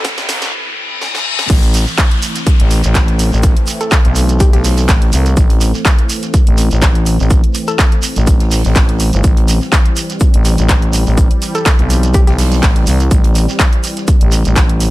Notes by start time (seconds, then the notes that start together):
Already playing: A1 B2 C3 E3 E4 A4 C5 B5, riser
0.04 kick, snare, closed hi-hat, shekere, shaker
0.18 A1, snare, closed hi-hat
0.29 C2, snare, open hi-hat, shekere, shaker
0.42 snare, closed hi-hat, shekere
0.53 reverse cymbal
1.01 snare
1.15 snare
1.39 snare
1.50 A1 E3 A3 C4, kick, closed hi-hat, crash, downlifter, shaker, shekere
1.63 closed hi-hat
1.73 open hi-hat, shaker, shekere
1.87 snare, shekere
1.98 kick, snare, clap, closed hi-hat, shaker, shekere
2.11 closed hi-hat
2.22 open hi-hat, shekere, shaker
2.35 snare, closed hi-hat, shekere
2.47 kick, closed hi-hat, shekere, shaker
2.60 A1, closed hi-hat
2.70 open hi-hat, shekere, shaker
2.83 A1, closed hi-hat, shekere
2.95 kick, snare, clap, closed hi-hat, shaker, shekere
3.08 closed hi-hat
3.19 open hi-hat, shekere, shaker
3.32 A1, shekere
3.43 kick, closed hi-hat, shaker, shekere
3.57 closed hi-hat
3.66 open hi-hat, shaker, shekere
3.81 A4, closed hi-hat, shekere
3.91 kick, snare, clap, closed hi-hat, shekere, shaker
4.05 B1, closed hi-hat
4.15 open hi-hat, shekere, shaker
4.29 closed hi-hat, shekere
4.40 G4, kick, closed hi-hat, shekere, shaker
4.53 B1 G4, snare, closed hi-hat
4.64 open hi-hat, shekere
4.78 closed hi-hat, shekere
4.88 A1, kick, snare, clap, closed hi-hat, shekere, shaker
5.02 closed hi-hat
5.12 C2, open hi-hat, shaker, shekere
5.26 closed hi-hat, shekere
5.37 A1, kick, closed hi-hat, shaker, shekere
5.50 closed hi-hat
5.60 open hi-hat, shekere, shaker
5.74 snare, shekere
5.85 kick, snare, clap, closed hi-hat, shekere, shaker
5.99 closed hi-hat
6.09 open hi-hat, shaker, shekere
6.22 snare, closed hi-hat, shekere
6.34 kick, closed hi-hat, shaker, shekere
6.47 A1, closed hi-hat
6.58 open hi-hat, shekere, shaker
6.71 A1, closed hi-hat, shekere
6.82 kick, snare, clap, closed hi-hat, shekere, shaker
6.95 closed hi-hat
7.06 open hi-hat, shaker, shekere
7.19 A1, shekere
7.30 kick, closed hi-hat, shekere, shaker
7.44 closed hi-hat
7.54 open hi-hat, shekere, shaker
7.67 A4, closed hi-hat, shekere
7.79 kick, snare, clap, closed hi-hat, shekere, shaker
7.92 closed hi-hat
8.02 open hi-hat, shaker, shekere
8.16 A1, closed hi-hat, shekere
8.26 kick, closed hi-hat, shekere, shaker
8.40 snare, closed hi-hat
8.51 open hi-hat, shekere
8.64 A1, closed hi-hat, shekere
8.75 kick, snare, clap, closed hi-hat, shekere, shaker
8.89 closed hi-hat
9.00 open hi-hat, shekere, shaker
9.13 G1, closed hi-hat, shekere
9.24 A1 G3, kick, closed hi-hat, shaker, shekere
9.37 closed hi-hat
9.48 open hi-hat, shaker, shekere
9.61 snare, shekere
9.72 kick, snare, clap, closed hi-hat, shaker, shekere
9.86 closed hi-hat
9.96 open hi-hat, shaker, shekere
10.10 snare, closed hi-hat, shekere
10.20 kick, closed hi-hat, shaker, shekere
10.34 A1, closed hi-hat
10.45 open hi-hat, shekere, shaker
10.58 A1, closed hi-hat, shekere
10.68 kick, snare, clap, closed hi-hat, shekere, shaker
10.82 closed hi-hat
10.93 open hi-hat, shekere, shaker
11.06 A1, shekere
11.18 kick, closed hi-hat, shaker, shekere
11.31 closed hi-hat
11.42 open hi-hat, shekere, shaker
11.55 A4, closed hi-hat, shekere
11.66 kick, snare, clap, closed hi-hat, shaker, shekere
11.79 B1, closed hi-hat
11.90 open hi-hat, shekere, shaker
12.03 closed hi-hat, shekere
12.14 G4, kick, closed hi-hat, shekere, shaker
12.27 B1 G4, snare, closed hi-hat
12.38 open hi-hat, shekere
12.52 closed hi-hat, shekere
12.62 A1, kick, snare, clap, closed hi-hat, shaker, shekere
12.76 closed hi-hat
12.87 C2, open hi-hat, shekere, shaker
13.00 closed hi-hat, shekere
13.11 A1, kick, closed hi-hat, shekere, shaker
13.24 closed hi-hat
13.35 open hi-hat, shekere, shaker
13.49 snare, shekere
13.59 kick, snare, clap, closed hi-hat, shekere, shaker
13.73 closed hi-hat
13.83 open hi-hat, shaker, shekere
13.97 snare, closed hi-hat, shekere
14.07 kick, closed hi-hat, shekere, shaker
14.21 A1, closed hi-hat
14.32 open hi-hat, shekere, shaker
14.45 A1, closed hi-hat, shekere
14.56 kick, snare, clap, closed hi-hat, shaker, shekere
14.69 closed hi-hat
14.80 open hi-hat, shaker, shekere